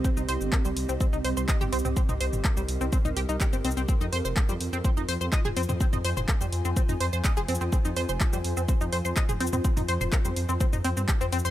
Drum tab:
HH |----o-------o-------o-------o---|----o-------o-------o-------o---|----o-------o-------o-------o---|----o-------o-------o-------o---|
SH |x-x-x-x-x-x---x-x-x-x-x-x-x-xxx-|x-x-x-x-x-x---x-x-x-x-x-x-x-xxx-|x-x-x-x-x-x---x-x-x-x-x-x-x-xxx-|x-x-x-x-x-x---x-x-x-x-x-x-x-xxx-|
CP |--------x---------------x-------|--------x---------------x-------|--------x---------------x-------|--------x---------------x-------|
T2 |--------------------------o---o-|--o---o-----------o-------------|--------------------------o---o-|--o---o-----------o-------------|
BD |o-------o-------o-------o-------|o-------o-------o-------o-------|o-------o-------o-------o-------|o-------o-------o-------o-------|

HH |----o-------o-------o-------o---|--o-o-------o-------o-------o---|
SH |x-x-x-x-x-x---x-x-x-x-x-x-x-xxx-|x-x-x-x-x-x-x-x-x-x-x-x-x-x-xxx-|
CP |--------x---------------x-------|--------x---------------x-------|
T2 |--------------------------o---o-|--o---o-----------o-------------|
BD |o-------o-------o-------o-------|o-------o-------o-------o-------|